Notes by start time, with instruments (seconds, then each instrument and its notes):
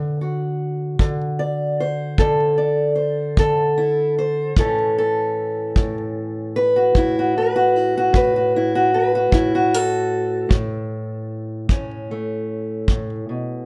Already playing: steel-string acoustic guitar D3
0.21 steel-string acoustic guitar F#4
0.99 steel-string acoustic guitar D3, kick
1.39 steel-string acoustic guitar D5
1.80 steel-string acoustic guitar C5
2.18 steel-string acoustic guitar D3 A4, kick
2.58 steel-string acoustic guitar D5
2.96 steel-string acoustic guitar C5
3.37 steel-string acoustic guitar D3 A4, kick
3.78 steel-string acoustic guitar E4
4.19 steel-string acoustic guitar C5
4.57 steel-string acoustic guitar A2 E3 A3 C#4 A4, kick
4.98 steel-string acoustic guitar A4
5.76 steel-string acoustic guitar A2, kick
6.56 steel-string acoustic guitar B4
6.76 steel-string acoustic guitar F#4
6.95 steel-string acoustic guitar A2 E4, kick
7.19 steel-string acoustic guitar F#4
7.38 steel-string acoustic guitar B4
7.56 steel-string acoustic guitar F#4
7.76 steel-string acoustic guitar E4
7.97 steel-string acoustic guitar F#4
8.13 steel-string acoustic guitar A2 B4, kick
8.36 steel-string acoustic guitar F#4
8.56 steel-string acoustic guitar E4
8.75 steel-string acoustic guitar F#4
8.94 steel-string acoustic guitar B4
9.15 steel-string acoustic guitar F#4
9.31 steel-string acoustic guitar A2 E4, kick
9.55 steel-string acoustic guitar F#4
9.74 steel-string acoustic guitar A4
10.49 steel-string acoustic guitar A2, kick
11.69 steel-string acoustic guitar A2 C#4, kick
12.11 steel-string acoustic guitar A3
12.88 steel-string acoustic guitar A2, kick
13.29 steel-string acoustic guitar B2